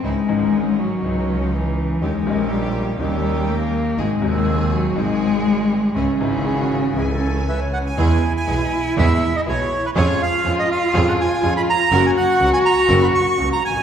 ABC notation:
X:1
M:4/4
L:1/16
Q:1/4=122
K:C#m
V:1 name="Bandoneon"
z16 | z16 | z16 | z12 e2 f g- |
g3 g4- g e3 d c3 B | c2 ^e3 d e3 f g3 b ^a2- | ^a g f3 g a3 b c'3 a g2 |]
V:2 name="Flute"
z16 | z16 | z16 | z4 G F3 G A3 B c3 |
z16 | z16 | z16 |]
V:3 name="String section"
[CDE]2 [CD]6 [CD]8 | [CD=G]2 [CDG]6 [CDG]8 | [^B,FG]2 [B,FG]6 [B,FG]8 | [CEG]2 [CEG]6 [CEg]8 |
[B,EG]2 z2 [B,EG]2 z2 [B,EG]2 z2 [B,EG]2 z2 | [C^EG]2 z2 [CEG]2 z2 [CEG]2 z2 [CEG]2 z2 | [CF^A]2 z2 [CFA]2 z2 [CFA]2 z2 [CFA]2 z2 |]
V:4 name="Cello" clef=bass
G,6 F,6 E,4 | G,4 =G,4 G,4 ^A,4 | G,4 z2 F,2 G,8 | C,12- C,2 z2 |
E16 | ^E16 | F16 |]
V:5 name="Grand piano" clef=bass
[C,,C,E,G,D]2 [G,,,G,,C,E,G,D]6 [C,,C,E,G,D]8 | [D,,C,D,=G,^A,D]2 [^A,,,^A,,C,G,A,D]6 [D,,C,D,G,A,D]8 | [G,,,G,,^B,,F,G,D]2 [D,,,D,,B,,F,G,D]6 [G,,,G,,B,,F,G,D]8 | [C,,C,E,G,E]2 [G,,,G,,C,E,G,E]6 [C,,C,E,E]8 |
[E,,E,G,B,G]2 z2 [B,,,B,,E,G,B,G]2 z2 [E,,E,G,B,G]2 z2 [B,,,B,,E,G,B,G]2 z2 | [^E,,^E,G,CG]2 z2 [E,,E,G,CG]2 z2 [E,,E,G,CG]2 z2 [E,,E,G,CG]2 z2 | [F,,C,F,^A,F]2 z2 [C,,C,F,A,F]2 z2 [F,,C,F,A,F]2 z2 [C,,C,F,A,F]2 z/2 G,,,/2 =A,,,/2 z/2 |]
V:6 name="Double bass" clef=bass
C,,2 G,,,6 C,,8 | D,,2 ^A,,,6 D,,8 | G,,,2 D,,6 G,,,8 | C,,2 G,,,6 C,,8 |
E,,2 z2 B,,,2 z2 E,,2 z2 B,,,2 z2 | ^E,,2 z2 E,,2 z2 E,,2 z2 E,,2 z2 | F,,,2 z2 C,,2 z2 F,,,2 z2 C,,2 A,,,2 |]